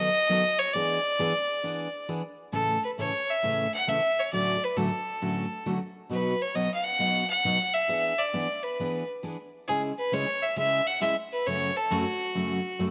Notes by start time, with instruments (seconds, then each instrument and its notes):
Already playing: fiddle D#5
0.29 steel-string acoustic guitar D#3 F#3 B3 D#4 A4
0.59 fiddle C#5
0.73 steel-string acoustic guitar E3 B3 D4 G#4, fiddle D5
1.19 steel-string acoustic guitar E3 B3 D4 G#4
1.63 steel-string acoustic guitar E3 B3 D4 G#4
2.09 steel-string acoustic guitar E3 B3 D4 G#4
2.52 steel-string acoustic guitar A2 C#3 E3 A3 C#4 A4, fiddle A4
2.84 fiddle B4
2.98 steel-string acoustic guitar A2 C#3 E3 A3 C#4 A4, fiddle C#5
3.30 fiddle E5
3.43 steel-string acoustic guitar A2 C#3 E3 A3 C#4 A4
3.74 fiddle F#5
3.87 steel-string acoustic guitar A2 C#3 E3 A3 C#4 A4, fiddle E5
4.19 fiddle C#5
4.33 steel-string acoustic guitar A2 D3 F#3 A3 C#4 F#4, fiddle D5
4.64 fiddle B4
4.76 steel-string acoustic guitar A2 D3 F#3 A3 C#4 F#4, fiddle A4
5.22 steel-string acoustic guitar A2 D3 F#3 A3 C#4 F#4
5.66 steel-string acoustic guitar A2 D3 F#3 A3 C#4 F#4
6.10 steel-string acoustic guitar B2 F#3 B3 D#4 F#4, fiddle B4
6.41 fiddle C#5
6.55 steel-string acoustic guitar B2 F#3 B3 D#4 F#4, fiddle D#5
6.74 fiddle F5
6.84 fiddle F#5
6.99 steel-string acoustic guitar B2 F#3 B3 D#4 F#4
7.30 fiddle F#5
7.45 steel-string acoustic guitar B2 F#3 B3 D#4 F#4
7.74 fiddle E5
7.88 steel-string acoustic guitar E3 B3 D4 G#4
8.18 fiddle D5
8.33 steel-string acoustic guitar E3 B3 D4 G#4
8.63 fiddle B4
8.80 steel-string acoustic guitar E3 B3 D4 G#4
9.23 steel-string acoustic guitar E3 B3 D4 G#4
9.68 steel-string acoustic guitar C#3 G#3 C#4 E4 G#4, fiddle G#4
9.98 fiddle B4
10.12 steel-string acoustic guitar C#3 G#3 C#4 E4 G#4, fiddle C#5
10.43 fiddle E5
10.56 steel-string acoustic guitar C#3 G#3 C#4 E4 G#4, fiddle E5
10.87 fiddle F#5
11.00 steel-string acoustic guitar C#3 G#3 C#4 E4 G#4, fiddle E5
11.32 fiddle B4
11.47 steel-string acoustic guitar F#2 C#3 F#3 A3 C#4 F#4, fiddle C#5
11.76 fiddle A4
11.90 steel-string acoustic guitar F#2 C#3 F#3 A3 C#4 F#4, fiddle F#4
12.35 steel-string acoustic guitar F#2 C#3 F#3 A3 C#4 F#4
12.79 steel-string acoustic guitar F#2 C#3 F#3 A3 C#4 F#4